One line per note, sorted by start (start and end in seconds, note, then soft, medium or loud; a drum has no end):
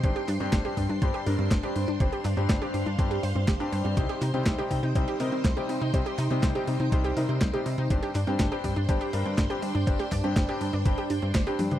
0.00 0.14 G1 loud
0.00 0.23 G2 medium
0.00 0.23 G3 medium
0.00 0.23 C4 medium
0.00 3.93 D4 medium
0.00 0.23 D4 medium
0.00 0.23 G4 medium
0.00 11.79 C5 medium
0.00 0.13 C5 medium
0.00 1.96 G5 medium
0.00 7.86 C6 medium
0.00 kick loud
0.00 closed hi-hat medium
0.16 0.25 G4 loud
0.16 closed hi-hat soft
0.28 0.38 G2 loud
0.28 0.38 D4 loud
0.28 clap medium
0.28 open hi-hat loud
0.40 0.51 G2 loud
0.40 0.61 G2 medium
0.40 0.61 G3 medium
0.40 0.50 C4 medium
0.40 0.61 C4 medium
0.40 0.61 D4 medium
0.40 0.61 G4 loud
0.40 closed hi-hat soft
0.53 0.63 G1 medium
0.53 0.64 C5 medium
0.53 kick loud
0.53 snare loud
0.53 clap medium
0.53 closed hi-hat medium
0.65 0.84 G2 medium
0.65 0.84 G3 medium
0.65 0.84 C4 medium
0.65 0.84 D4 medium
0.65 0.77 G4 loud
0.65 0.84 G4 medium
0.65 closed hi-hat soft
0.77 0.87 G2 medium
0.77 0.88 D4 medium
0.77 kick medium
0.77 open hi-hat medium
0.89 1.00 G2 medium
0.89 0.99 D4 loud
0.89 closed hi-hat soft
1.02 1.12 G1 loud
1.02 1.21 G2 medium
1.02 1.21 G3 medium
1.02 1.21 C4 medium
1.02 1.21 D4 medium
1.02 1.21 G4 medium
1.02 1.11 C5 medium
1.02 kick loud
1.02 closed hi-hat medium
1.14 1.24 G4 loud
1.14 closed hi-hat soft
1.26 1.37 G2 loud
1.26 1.58 G2 medium
1.26 1.58 G3 medium
1.26 1.58 C4 medium
1.26 1.36 D4 loud
1.26 1.58 D4 medium
1.26 1.58 A#4 medium
1.26 open hi-hat loud
1.39 1.49 G2 loud
1.39 1.48 C4 medium
1.39 closed hi-hat soft
1.51 1.61 G1 loud
1.51 1.63 C5 medium
1.51 kick loud
1.51 snare loud
1.51 clap medium
1.51 closed hi-hat medium
1.63 1.83 G2 medium
1.63 1.83 G3 medium
1.63 1.83 C4 medium
1.63 1.83 D4 medium
1.63 1.75 G4 loud
1.63 1.83 G4 medium
1.63 closed hi-hat soft
1.76 1.86 G2 medium
1.76 1.87 D4 medium
1.76 open hi-hat medium
1.88 1.98 G2 medium
1.88 1.98 D4 loud
1.88 closed hi-hat soft
2.00 2.10 G1 loud
2.00 2.20 G2 medium
2.00 2.20 G3 medium
2.00 2.20 C4 medium
2.00 2.20 D4 medium
2.00 2.20 G4 medium
2.00 2.10 C5 medium
2.00 3.95 F5 medium
2.00 kick loud
2.00 closed hi-hat medium
2.12 2.22 G4 loud
2.12 closed hi-hat soft
2.25 2.35 G2 loud
2.25 2.34 D4 loud
2.25 clap medium
2.25 open hi-hat loud
2.37 2.47 G2 loud
2.37 2.58 G2 medium
2.37 2.58 G3 medium
2.37 2.47 C4 medium
2.37 2.58 C4 medium
2.37 2.58 D4 medium
2.37 2.58 G4 loud
2.37 closed hi-hat soft
2.49 2.60 G1 medium
2.49 2.61 C5 medium
2.49 kick loud
2.49 snare loud
2.49 clap medium
2.49 closed hi-hat medium
2.62 2.81 G2 medium
2.62 2.81 G3 medium
2.62 2.81 C4 medium
2.62 2.81 D4 medium
2.62 2.73 G4 loud
2.62 2.81 G4 loud
2.62 closed hi-hat soft
2.74 2.84 G2 medium
2.74 2.85 D4 medium
2.74 open hi-hat medium
2.86 2.97 G2 medium
2.86 2.96 D4 loud
2.86 closed hi-hat soft
2.99 3.19 G1 loud
2.99 3.18 G2 medium
2.99 3.18 G3 medium
2.99 3.18 C4 medium
2.99 3.18 D4 medium
2.99 3.18 G4 medium
2.99 3.08 C5 medium
2.99 kick loud
2.99 closed hi-hat medium
3.11 3.21 G4 loud
3.11 closed hi-hat soft
3.23 3.33 G2 medium
3.23 3.33 C5 loud
3.23 open hi-hat loud
3.35 3.46 G2 loud
3.35 3.45 C4 medium
3.35 closed hi-hat soft
3.48 3.58 G1 loud
3.48 3.59 G4 medium
3.48 kick loud
3.48 snare loud
3.48 clap medium
3.48 closed hi-hat medium
3.60 3.94 G2 medium
3.60 3.94 G3 medium
3.60 3.94 C4 medium
3.60 3.72 D4 medium
3.60 3.94 D4 medium
3.60 3.94 G4 loud
3.60 closed hi-hat soft
3.72 3.83 G2 medium
3.72 3.82 C5 medium
3.72 open hi-hat medium
3.85 3.95 G2 loud
3.85 3.94 C4 medium
3.85 closed hi-hat soft
3.97 4.07 C2 loud
3.97 4.16 C3 medium
3.97 4.16 G3 medium
3.97 4.16 C4 medium
3.97 7.86 D#4 medium
3.97 4.16 D#4 medium
3.97 4.16 G4 medium
3.97 4.07 C5 medium
3.97 7.86 G5 medium
3.97 kick loud
3.97 closed hi-hat medium
4.09 4.19 G4 loud
4.09 closed hi-hat soft
4.22 4.32 C3 loud
4.22 4.31 D#4 loud
4.22 clap medium
4.22 open hi-hat loud
4.34 4.44 C3 loud
4.34 4.55 C3 medium
4.34 4.55 G3 medium
4.34 4.55 C4 medium
4.34 4.44 C4 medium
4.34 4.55 D#4 medium
4.34 4.55 G4 loud
4.34 closed hi-hat soft
4.46 4.56 C2 medium
4.46 4.58 C5 medium
4.46 kick loud
4.46 snare loud
4.46 clap medium
4.46 closed hi-hat medium
4.58 4.78 C3 medium
4.58 4.78 G3 medium
4.58 4.78 C4 medium
4.58 4.78 D#4 medium
4.58 4.78 G4 loud
4.58 4.70 G4 loud
4.58 closed hi-hat soft
4.71 4.81 C3 medium
4.71 4.82 D#4 medium
4.71 kick medium
4.71 open hi-hat medium
4.83 4.93 C3 medium
4.83 4.93 D#4 loud
4.83 closed hi-hat soft
4.95 5.06 C2 medium
4.95 5.15 C3 medium
4.95 5.15 G3 medium
4.95 5.15 C4 medium
4.95 5.15 D#4 medium
4.95 5.15 G4 medium
4.95 5.05 C5 medium
4.95 kick loud
4.95 closed hi-hat medium
5.08 5.17 G4 loud
5.08 closed hi-hat soft
5.20 5.30 C3 loud
5.20 5.51 C3 medium
5.20 5.51 G3 medium
5.20 5.51 C4 medium
5.20 5.30 D#4 loud
5.20 5.51 D#4 medium
5.20 5.51 A#4 medium
5.20 open hi-hat loud
5.32 5.42 C3 loud
5.32 5.42 C4 medium
5.32 closed hi-hat soft
5.44 5.55 C2 loud
5.44 5.56 C5 medium
5.44 kick loud
5.44 snare loud
5.44 clap medium
5.44 closed hi-hat medium
5.57 5.76 C3 medium
5.57 5.76 G3 medium
5.57 5.76 C4 medium
5.57 5.76 D#4 medium
5.57 5.68 G4 loud
5.57 5.76 G4 medium
5.57 closed hi-hat soft
5.69 5.79 C3 medium
5.69 5.80 D#4 medium
5.69 open hi-hat loud
5.81 5.92 C3 medium
5.81 5.91 D#4 loud
5.81 closed hi-hat soft
5.94 6.04 C2 loud
5.94 6.13 C3 medium
5.94 6.13 G3 medium
5.94 6.13 C4 medium
5.94 6.13 D#4 medium
5.94 6.13 G4 medium
5.94 6.03 C5 medium
5.94 kick loud
5.94 closed hi-hat medium
6.06 6.16 G4 loud
6.06 closed hi-hat soft
6.18 6.28 C3 loud
6.18 6.28 D#4 loud
6.18 clap soft
6.18 open hi-hat loud
6.31 6.51 C3 medium
6.31 6.41 C3 loud
6.31 6.51 G3 medium
6.31 6.51 C4 medium
6.31 6.40 C4 medium
6.31 6.51 D#4 medium
6.31 6.51 G4 loud
6.31 closed hi-hat soft
6.43 6.53 C2 medium
6.43 6.55 C5 medium
6.43 kick loud
6.43 snare loud
6.43 clap medium
6.43 closed hi-hat medium
6.55 6.75 C3 medium
6.55 6.75 G3 medium
6.55 6.74 C4 medium
6.55 6.75 D#4 medium
6.55 6.75 G4 medium
6.55 6.67 G4 loud
6.55 closed hi-hat soft
6.67 6.78 C3 medium
6.67 6.79 D#4 medium
6.67 open hi-hat medium
6.80 6.90 C3 medium
6.80 6.89 D#4 loud
6.80 closed hi-hat soft
6.92 7.12 C2 loud
6.92 7.11 C3 medium
6.92 7.11 G3 medium
6.92 7.11 C4 medium
6.92 7.11 D#4 medium
6.92 7.11 G4 loud
6.92 7.02 C5 medium
6.92 kick loud
6.92 closed hi-hat medium
7.04 7.14 G4 loud
7.04 closed hi-hat soft
7.17 7.48 C3 medium
7.17 7.27 C3 medium
7.17 7.48 G3 medium
7.17 7.48 C4 medium
7.17 7.48 D#4 medium
7.17 7.26 D#4 loud
7.17 7.48 A#4 medium
7.17 open hi-hat loud
7.29 7.39 C3 loud
7.29 7.39 C4 medium
7.29 closed hi-hat soft
7.41 7.51 C2 loud
7.41 7.53 C5 medium
7.41 kick loud
7.41 snare loud
7.41 clap medium
7.41 closed hi-hat medium
7.53 7.73 C3 medium
7.53 7.73 G3 medium
7.53 7.73 C4 medium
7.53 7.73 D#4 medium
7.53 7.65 G4 loud
7.53 7.73 G4 medium
7.53 closed hi-hat soft
7.66 7.76 C3 medium
7.66 7.77 D#4 medium
7.66 open hi-hat loud
7.78 7.88 C3 loud
7.78 7.88 D#4 loud
7.78 closed hi-hat soft
7.90 8.01 G1 loud
7.90 8.10 G2 medium
7.90 8.10 G3 medium
7.90 8.10 C4 medium
7.90 11.79 D4 medium
7.90 8.10 D4 medium
7.90 8.10 G4 medium
7.90 8.00 C5 medium
7.90 11.79 G5 medium
7.90 11.79 C6 medium
7.90 kick loud
7.90 closed hi-hat loud
8.03 8.12 G4 loud
8.03 closed hi-hat soft
8.15 8.25 G2 loud
8.15 8.25 D4 loud
8.15 clap medium
8.15 open hi-hat loud
8.27 8.38 G2 loud
8.27 8.48 G2 medium
8.27 8.48 G3 medium
8.27 8.37 C4 medium
8.27 8.48 C4 medium
8.27 8.48 D4 medium
8.27 8.48 G4 loud
8.27 closed hi-hat soft
8.39 8.50 G1 medium
8.39 8.51 C5 medium
8.39 kick loud
8.39 snare loud
8.39 clap medium
8.39 closed hi-hat loud
8.52 8.71 G2 medium
8.52 8.71 G3 medium
8.52 8.71 C4 medium
8.52 8.71 D4 medium
8.52 8.63 G4 loud
8.52 8.71 G4 loud
8.52 closed hi-hat soft
8.64 8.74 G2 medium
8.64 8.75 D4 medium
8.64 kick medium
8.64 open hi-hat loud
8.76 8.87 G2 medium
8.76 8.86 D4 loud
8.76 closed hi-hat soft
8.89 8.99 G1 loud
8.89 9.08 G2 medium
8.89 9.08 G3 medium
8.89 9.08 C4 medium
8.89 9.08 D4 medium
8.89 9.08 G4 loud
8.89 8.98 C5 medium
8.89 kick loud
8.89 closed hi-hat loud
9.01 9.11 G4 loud
9.01 closed hi-hat soft
9.13 9.44 G2 medium
9.13 9.24 G2 loud
9.13 9.44 G3 medium
9.13 9.44 C4 medium
9.13 9.23 D4 loud
9.13 9.44 D4 medium
9.13 9.44 A#4 medium
9.13 open hi-hat loud
9.25 9.36 G2 loud
9.25 9.35 C4 medium
9.25 closed hi-hat soft
9.38 9.48 G1 loud
9.38 9.50 C5 medium
9.38 kick loud
9.38 snare loud
9.38 clap medium
9.38 closed hi-hat medium
9.50 9.70 G2 medium
9.50 9.70 G3 medium
9.50 9.70 C4 medium
9.50 9.70 D4 medium
9.50 9.62 G4 loud
9.50 9.70 G4 medium
9.50 closed hi-hat soft
9.62 9.73 G2 medium
9.62 9.73 D4 medium
9.62 open hi-hat loud
9.75 9.85 G2 loud
9.75 9.84 D4 loud
9.75 closed hi-hat soft
9.87 9.97 G1 loud
9.87 10.06 G2 medium
9.87 10.06 G3 medium
9.87 10.06 C4 medium
9.87 10.06 D4 medium
9.87 10.06 G4 medium
9.87 9.97 C5 medium
9.87 kick loud
9.87 closed hi-hat loud
9.99 10.09 G4 loud
9.99 snare soft
9.99 closed hi-hat soft
10.12 10.22 G2 loud
10.12 10.21 D4 loud
10.12 kick medium
10.12 clap medium
10.12 open hi-hat loud
10.24 10.45 G2 medium
10.24 10.34 G2 loud
10.24 10.45 G3 medium
10.24 10.45 C4 medium
10.24 10.34 C4 medium
10.24 10.45 D4 medium
10.24 10.45 G4 loud
10.36 10.46 G1 medium
10.36 10.48 C5 medium
10.36 kick loud
10.36 snare loud
10.36 clap medium
10.36 closed hi-hat loud
10.49 10.68 G2 medium
10.49 10.68 G3 medium
10.49 10.68 C4 medium
10.49 10.68 D4 medium
10.49 10.68 G4 loud
10.49 10.60 G4 loud
10.49 closed hi-hat soft
10.61 10.71 G2 medium
10.61 10.72 D4 medium
10.61 open hi-hat loud
10.73 10.83 G2 medium
10.73 10.83 D4 loud
10.73 closed hi-hat soft
10.85 10.96 G1 loud
10.85 11.05 G2 medium
10.85 11.05 G3 medium
10.85 11.05 C4 medium
10.85 11.05 D4 medium
10.85 11.05 G4 medium
10.85 10.95 C5 medium
10.85 kick loud
10.85 closed hi-hat medium
10.98 11.08 G4 loud
10.98 closed hi-hat soft
11.10 11.20 G2 medium
11.10 11.20 D4 loud
11.10 open hi-hat loud
11.22 11.33 G2 medium
11.22 11.32 C4 medium
11.22 closed hi-hat soft
11.35 11.45 G1 medium
11.35 11.46 C5 medium
11.35 kick loud
11.35 snare loud
11.35 clap medium
11.35 closed hi-hat loud
11.47 11.79 G2 medium
11.47 11.79 G3 medium
11.47 11.79 C4 medium
11.47 11.79 D4 medium
11.47 11.79 G4 loud
11.47 11.59 G4 loud
11.47 closed hi-hat soft
11.59 11.69 G2 medium
11.59 11.70 D4 medium
11.59 open hi-hat loud
11.59 high tom medium
11.71 11.79 G2 medium
11.71 11.79 D4 loud
11.71 closed hi-hat soft
11.71 mid tom medium